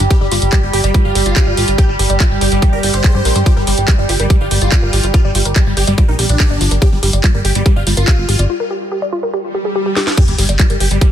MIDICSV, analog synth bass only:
0, 0, Header, 1, 2, 480
1, 0, Start_track
1, 0, Tempo, 419580
1, 120, Time_signature, 4, 2, 24, 8
1, 12720, End_track
2, 0, Start_track
2, 0, Title_t, "Analog synth bass"
2, 0, Program_c, 0, 38
2, 0, Note_on_c, 0, 31, 92
2, 84, Note_off_c, 0, 31, 0
2, 240, Note_on_c, 0, 31, 86
2, 324, Note_off_c, 0, 31, 0
2, 360, Note_on_c, 0, 31, 104
2, 444, Note_off_c, 0, 31, 0
2, 481, Note_on_c, 0, 31, 93
2, 564, Note_off_c, 0, 31, 0
2, 721, Note_on_c, 0, 31, 85
2, 805, Note_off_c, 0, 31, 0
2, 841, Note_on_c, 0, 31, 101
2, 925, Note_off_c, 0, 31, 0
2, 961, Note_on_c, 0, 31, 94
2, 1044, Note_off_c, 0, 31, 0
2, 1201, Note_on_c, 0, 31, 85
2, 1284, Note_off_c, 0, 31, 0
2, 1320, Note_on_c, 0, 31, 101
2, 1404, Note_off_c, 0, 31, 0
2, 1440, Note_on_c, 0, 31, 92
2, 1524, Note_off_c, 0, 31, 0
2, 1680, Note_on_c, 0, 31, 86
2, 1764, Note_off_c, 0, 31, 0
2, 1800, Note_on_c, 0, 32, 99
2, 1884, Note_off_c, 0, 32, 0
2, 1920, Note_on_c, 0, 31, 93
2, 2004, Note_off_c, 0, 31, 0
2, 2161, Note_on_c, 0, 31, 84
2, 2245, Note_off_c, 0, 31, 0
2, 2281, Note_on_c, 0, 31, 100
2, 2365, Note_off_c, 0, 31, 0
2, 2401, Note_on_c, 0, 31, 94
2, 2485, Note_off_c, 0, 31, 0
2, 2641, Note_on_c, 0, 31, 86
2, 2725, Note_off_c, 0, 31, 0
2, 2761, Note_on_c, 0, 31, 104
2, 2844, Note_off_c, 0, 31, 0
2, 2881, Note_on_c, 0, 31, 95
2, 2965, Note_off_c, 0, 31, 0
2, 3121, Note_on_c, 0, 31, 86
2, 3204, Note_off_c, 0, 31, 0
2, 3240, Note_on_c, 0, 31, 100
2, 3324, Note_off_c, 0, 31, 0
2, 3361, Note_on_c, 0, 31, 94
2, 3444, Note_off_c, 0, 31, 0
2, 3600, Note_on_c, 0, 43, 89
2, 3684, Note_off_c, 0, 43, 0
2, 3720, Note_on_c, 0, 34, 100
2, 3804, Note_off_c, 0, 34, 0
2, 3840, Note_on_c, 0, 43, 91
2, 3924, Note_off_c, 0, 43, 0
2, 4081, Note_on_c, 0, 31, 84
2, 4165, Note_off_c, 0, 31, 0
2, 4200, Note_on_c, 0, 31, 101
2, 4284, Note_off_c, 0, 31, 0
2, 4320, Note_on_c, 0, 31, 93
2, 4404, Note_off_c, 0, 31, 0
2, 4560, Note_on_c, 0, 31, 87
2, 4644, Note_off_c, 0, 31, 0
2, 4680, Note_on_c, 0, 31, 104
2, 4764, Note_off_c, 0, 31, 0
2, 4800, Note_on_c, 0, 31, 92
2, 4884, Note_off_c, 0, 31, 0
2, 5040, Note_on_c, 0, 31, 86
2, 5124, Note_off_c, 0, 31, 0
2, 5160, Note_on_c, 0, 31, 101
2, 5244, Note_off_c, 0, 31, 0
2, 5280, Note_on_c, 0, 31, 91
2, 5364, Note_off_c, 0, 31, 0
2, 5520, Note_on_c, 0, 31, 86
2, 5604, Note_off_c, 0, 31, 0
2, 5640, Note_on_c, 0, 32, 97
2, 5724, Note_off_c, 0, 32, 0
2, 5760, Note_on_c, 0, 31, 94
2, 5844, Note_off_c, 0, 31, 0
2, 6000, Note_on_c, 0, 31, 84
2, 6084, Note_off_c, 0, 31, 0
2, 6120, Note_on_c, 0, 31, 99
2, 6204, Note_off_c, 0, 31, 0
2, 6240, Note_on_c, 0, 31, 95
2, 6324, Note_off_c, 0, 31, 0
2, 6480, Note_on_c, 0, 31, 84
2, 6564, Note_off_c, 0, 31, 0
2, 6600, Note_on_c, 0, 31, 103
2, 6684, Note_off_c, 0, 31, 0
2, 6720, Note_on_c, 0, 31, 94
2, 6804, Note_off_c, 0, 31, 0
2, 6960, Note_on_c, 0, 34, 85
2, 7044, Note_off_c, 0, 34, 0
2, 7080, Note_on_c, 0, 34, 100
2, 7164, Note_off_c, 0, 34, 0
2, 7200, Note_on_c, 0, 34, 93
2, 7284, Note_off_c, 0, 34, 0
2, 7440, Note_on_c, 0, 31, 88
2, 7524, Note_off_c, 0, 31, 0
2, 7561, Note_on_c, 0, 31, 100
2, 7644, Note_off_c, 0, 31, 0
2, 7680, Note_on_c, 0, 31, 91
2, 7764, Note_off_c, 0, 31, 0
2, 7920, Note_on_c, 0, 31, 86
2, 8004, Note_off_c, 0, 31, 0
2, 8040, Note_on_c, 0, 31, 101
2, 8124, Note_off_c, 0, 31, 0
2, 8160, Note_on_c, 0, 31, 91
2, 8244, Note_off_c, 0, 31, 0
2, 8400, Note_on_c, 0, 31, 89
2, 8484, Note_off_c, 0, 31, 0
2, 8520, Note_on_c, 0, 31, 101
2, 8604, Note_off_c, 0, 31, 0
2, 8640, Note_on_c, 0, 31, 94
2, 8724, Note_off_c, 0, 31, 0
2, 8880, Note_on_c, 0, 31, 88
2, 8964, Note_off_c, 0, 31, 0
2, 9000, Note_on_c, 0, 31, 104
2, 9084, Note_off_c, 0, 31, 0
2, 9120, Note_on_c, 0, 31, 91
2, 9204, Note_off_c, 0, 31, 0
2, 9360, Note_on_c, 0, 31, 88
2, 9444, Note_off_c, 0, 31, 0
2, 9479, Note_on_c, 0, 32, 98
2, 9564, Note_off_c, 0, 32, 0
2, 9600, Note_on_c, 0, 31, 93
2, 9684, Note_off_c, 0, 31, 0
2, 11760, Note_on_c, 0, 31, 85
2, 11844, Note_off_c, 0, 31, 0
2, 11880, Note_on_c, 0, 31, 99
2, 11964, Note_off_c, 0, 31, 0
2, 12000, Note_on_c, 0, 31, 93
2, 12084, Note_off_c, 0, 31, 0
2, 12240, Note_on_c, 0, 31, 85
2, 12324, Note_off_c, 0, 31, 0
2, 12360, Note_on_c, 0, 31, 99
2, 12444, Note_off_c, 0, 31, 0
2, 12480, Note_on_c, 0, 31, 95
2, 12564, Note_off_c, 0, 31, 0
2, 12720, End_track
0, 0, End_of_file